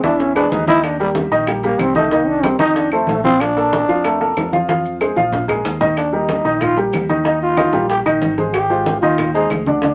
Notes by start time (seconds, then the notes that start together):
0.03 E2 E3 D4 E4 E5, high bongo, high conga, maracas
0.20 C#4, high bongo, high conga, maracas
0.35 G#3 D4 G#4 B4, high bongo, high conga, claves, maracas
0.51 D#2 D#4, low bongo, high conga, maracas
0.67 D#3 D#4 E4 D#5, low bongo, high conga, maracas
0.83 D4, high bongo, high conga, claves, maracas
1.00 G3 G4 A#4, high conga, maracas
1.15 high bongo, high conga, maracas
1.31 A#1 D#3 D#4 D#5, high bongo, high conga, maracas
1.47 G3 G4 A#4, high bongo, high conga, claves, maracas
1.63 G3 A#3 G4 A#4, high bongo, high conga, maracas
1.79 C2 C4, high bongo, low bongo, high conga, claves, maracas
1.95 D#3 A3 D#4 D#5, high bongo, high conga, maracas
2.11 D#3 A#3 D#4 D#5, high bongo, high conga, maracas
2.27 D4, high conga
2.43 G3 C4 G4 A#4, high bongo, high conga, claves, maracas
2.59 F2 D#3 D#4 D#5, high bongo, high conga, maracas
2.76 D4, high bongo, high conga, maracas
2.92 F3 A3 A4 C5, high bongo, high conga, claves
3.07 A#1 A3, high bongo, low bongo, high conga, maracas
3.24 F3 C4 F4 F5, high bongo, high conga, maracas
3.40 D4, high bongo, claves, maracas
3.56 A#3 A4 A#4, high conga, maracas
3.73 high bongo, high conga, maracas
3.89 F2 F3 F4 F5, high bongo, high conga, maracas
4.04 A3 A4 A#4, high bongo, high conga, claves, maracas
4.20 A#3 A4 A#4, high bongo, high conga
4.36 F2, high bongo, low bongo, high conga, claves, maracas
4.52 F3 F4 F5, high bongo, high conga, maracas
4.68 F3 F4 F5, high bongo, high conga, maracas
4.85 maracas
5.01 G#3 G#4 C5, high bongo, claves, maracas
5.16 A#1 F3 F4 F5, high bongo, high conga, maracas
5.32 high bongo, low conga, maracas
5.48 G#3 G#4 A#4, low conga, claves, maracas
5.65 D#2, low bongo, maracas
5.81 D#3 D#4 D#5, low bongo, low conga, maracas
5.97 D4, high bongo, high conga, claves, maracas
6.13 G3 D#4 G4 A#4, high conga
6.29 high bongo, high conga, maracas
6.45 A#1 D#3 D#4 D#5, high bongo, high conga, maracas
6.61 F4, high bongo, high conga, low conga, claves, maracas
6.77 G3 G4 A#4, high bongo, high conga, maracas
6.93 D#2, high bongo, low bongo, high conga, claves, maracas
7.09 D#3 D#4 D#5, high bongo, high conga, maracas
7.25 D#3 D#4 D#5, high bongo, high conga, maracas
7.42 F4, high conga
7.57 D#3 D#4 D#5, high bongo, high conga, claves, maracas
7.73 A#1 G3 G4 A#4, high bongo, high conga, maracas
7.90 G4, high bongo, high conga, maracas
8.06 A#1 D#3 D#4 D#5, high bongo, high conga, claves, maracas
8.22 G#1, high bongo, low bongo, high conga, maracas
8.38 G#3 G#4 C5, high bongo, high conga, maracas
8.53 G4, high bongo, high conga, claves, maracas
8.70 G#3 F4 C5, high conga
8.86 high bongo, high conga, maracas
9.01 D#2 D#3 D#4 F4 D#5, high bongo, high conga, maracas
9.18 high bongo, high conga, low conga, claves, maracas
9.34 G#3 D#4 G#4 C5, high bongo, high conga, maracas
9.50 D2, high bongo, low bongo, high conga, claves, maracas
9.66 D3 D4 D5, high bongo, high conga, maracas
9.82 D3 D4 D5, high bongo, high conga, maracas